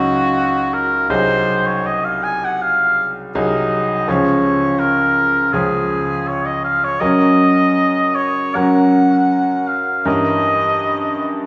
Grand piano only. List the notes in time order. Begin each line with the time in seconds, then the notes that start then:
Already playing: C#2 F#3 D#4 F#4
1.10 C2 F#3 D#4 G#4
3.35 C2 F#3 D#4 G#4
4.08 C#2 F3 C#4 G#4
5.53 C#2 F3 C#4 G#4
7.01 F#2 F#3 C#4 A#4
8.55 F#2 F#3 C#4 A#4
10.05 G2 E3 C#4 A#4